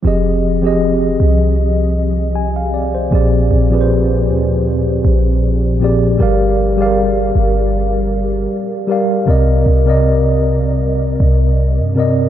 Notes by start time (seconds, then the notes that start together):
0.03 F1 F3 C4 G4 G#4
0.07 D#5
0.62 F3 C4 G4 G#4
0.67 D#5
1.20 C2
2.35 G#5
2.56 F5
2.74 D5
2.95 C5
3.10 A#1 A#2 F3 C4 G4 G#4
3.15 D5
3.51 A#1
3.69 A#2 F3 C4 G4 G#4
3.74 B4
3.81 C5
4.28 D2
5.05 A#1
5.79 A#2 F3 C4 G4 G#4
5.84 D5
6.18 G1 G3 G4 A#4 D5
6.23 F5
6.77 G3 G4 G#4 D5
6.82 F5
6.86 A#4
7.35 G1
8.87 G3 G4 A#4 D5
8.92 F5
9.26 C2 C3 C4 A#4 D5
9.30 D#5
9.66 C2
9.85 C3 C4 A#4 D5
9.90 D#5
11.20 C2
11.79 G2
11.95 C3 C4 A#4 D5
12.00 D#5